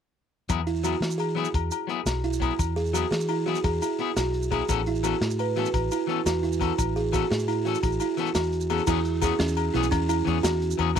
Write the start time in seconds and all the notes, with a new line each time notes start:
0.49 E2 F#3 B3 E4 G#4, kick, closed hi-hat, low agogo, maracas
0.67 E4, closed hi-hat
0.76 maracas
0.84 F#3 B3 E4 F#4 G#4, closed hi-hat, low agogo, maracas
1.00 E3, snare, closed hi-hat, maracas
1.10 maracas
1.18 G#4, closed hi-hat, low agogo
1.35 F#3 B3 E4 G#4, closed hi-hat
1.45 maracas
1.54 E2, kick, closed hi-hat, low agogo
1.71 E4, closed hi-hat, low agogo, maracas
1.87 F#3 B3 E4 G#4, closed hi-hat
2.06 B1 F#4, snare, closed hi-hat, low agogo, maracas
2.24 E4, closed hi-hat
2.33 maracas
2.40 F#3 B3 E4 G#4, kick, closed hi-hat, low agogo
2.59 E2, kick, closed hi-hat, low agogo, maracas
2.76 G#4, closed hi-hat
2.86 maracas
2.93 F#3 B3 E4 F#4 G#4, closed hi-hat, low agogo, maracas
3.11 E3 G#4, snare, closed hi-hat, maracas
3.21 maracas
3.29 E4, closed hi-hat, low agogo
3.46 F#3 B3 E4 F#4 G#4, closed hi-hat
3.55 maracas
3.64 E2 G#4, kick, closed hi-hat, low agogo
3.81 E4, closed hi-hat, low agogo, maracas
3.99 B3 E4 G#4, muted clean electric guitar stroke, closed hi-hat
4.17 B1 F#4, snare, closed hi-hat, low agogo, maracas
4.34 closed hi-hat
4.42 maracas
4.51 F#3 B3 E4 G#4, kick, closed hi-hat, low agogo
4.68 A1 E3 B3 C#4 A4, kick, closed hi-hat, low agogo, maracas
4.86 E4, closed hi-hat
4.95 maracas
5.03 E3 B3 C#4 F#4 A4, closed hi-hat, low agogo, maracas
5.21 A2, snare, closed hi-hat, maracas
5.30 maracas
5.39 B4, closed hi-hat, low agogo
5.56 E3 B3 C#4 F#4 A4, closed hi-hat
5.66 maracas
5.74 A1, kick, closed hi-hat, low agogo
5.91 E4, closed hi-hat, low agogo, maracas
6.07 E3 B3 C#4 A4, closed hi-hat
6.26 E2 F#4, snare, closed hi-hat, low agogo, maracas
6.43 E4, closed hi-hat
6.53 maracas
6.60 E3 B3 C#4 A4, kick, closed hi-hat, low agogo
6.78 A1, kick, closed hi-hat, low agogo, maracas
6.96 G#4, closed hi-hat
7.12 E3 B3 C#4 F#4 A4, kick, closed hi-hat, low agogo, maracas
7.31 A2 G#4, snare, closed hi-hat
7.39 maracas
7.48 E4, closed hi-hat, low agogo
7.65 E3 C#4 F#4 A4, closed hi-hat
7.75 maracas
7.83 A1 G#4, kick, closed hi-hat, low agogo, maracas
7.92 maracas
8.00 E4, closed hi-hat, low agogo, maracas
8.17 E3 B3 C#4 A4, snare, closed hi-hat, maracas
8.27 maracas
8.35 E2 F#4, snare, closed hi-hat, low agogo, maracas
8.44 maracas
8.52 closed hi-hat, maracas
8.61 maracas
8.70 E3 B3 C#4 G#4 A4, closed hi-hat, low agogo, maracas
8.79 maracas
8.87 E2 E3 B3 C#4 E4 G#4, kick, crash, low agogo, maracas
9.05 closed hi-hat, maracas
9.22 E3 B3 C#4 G#4, kick, closed hi-hat, low agogo, maracas
9.39 E2 C#4, snare, closed hi-hat, maracas
9.48 maracas
9.57 closed hi-hat, low agogo
9.74 B1 E3 B3 C#4 E4 G#4, snare, closed hi-hat
9.83 maracas
9.91 E2 C#4, kick, closed hi-hat, low agogo
10.09 E4, closed hi-hat, low agogo, maracas
10.25 E2 E3 B3 C#4 G#4, closed hi-hat
10.43 E2 F#4, snare, closed hi-hat, low agogo, maracas
10.62 closed hi-hat
10.71 maracas
10.78 E2 E3 B3 C#4 G#4, closed hi-hat, low agogo
10.96 E3 A3, low agogo